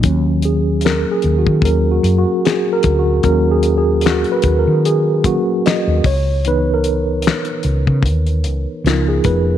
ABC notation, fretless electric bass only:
X:1
M:4/4
L:1/16
Q:"Swing 16ths" 1/4=75
K:D#phr
V:1 name="Fretless electric bass" clef=bass
D,,4- D,, z D,, D, D,,2 F,, z3 =D,,2 | D,,4- D,, z D,, D,4 z2 D,, C,,2- | C,,4- C,, z C,, C, D,,2 C,, z C,,2 ^E,,,2 |]